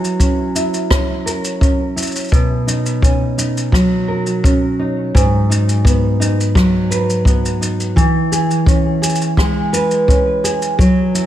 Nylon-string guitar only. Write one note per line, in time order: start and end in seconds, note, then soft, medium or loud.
0.00 3.00 F#3 medium
0.00 0.20 C#4 medium
0.00 0.54 E4 medium
0.20 0.90 C#4 medium
0.55 1.95 E4 medium
0.90 1.61 C#4 medium
1.26 4.08 A#4 medium
1.61 2.70 C#4 medium
1.96 2.39 E4 medium
2.32 5.14 B2 medium
2.67 3.37 D#4 medium
3.03 4.42 C#4 medium
3.38 4.79 D#4 medium
3.73 6.55 F#3 medium
4.08 5.21 A#4 medium
4.44 5.21 C#4 medium
4.79 5.49 D#4 medium
5.14 7.97 G#2 medium
5.50 6.19 D#4 medium
5.84 7.25 B3 medium
6.20 7.60 D#4 medium
6.55 8.04 F#3 medium
6.90 8.70 B4 medium
7.25 8.67 B3 medium
7.61 8.04 D#4 medium
7.96 10.82 E3 medium
8.32 9.01 G#4 medium
8.67 10.08 C#4 medium
9.02 10.43 G#4 medium
9.38 10.79 G#3 medium
9.73 10.86 B4 medium
10.09 11.26 C#4 medium
10.44 10.86 G#4 medium
10.79 11.26 F#3 medium
11.15 11.26 E4 medium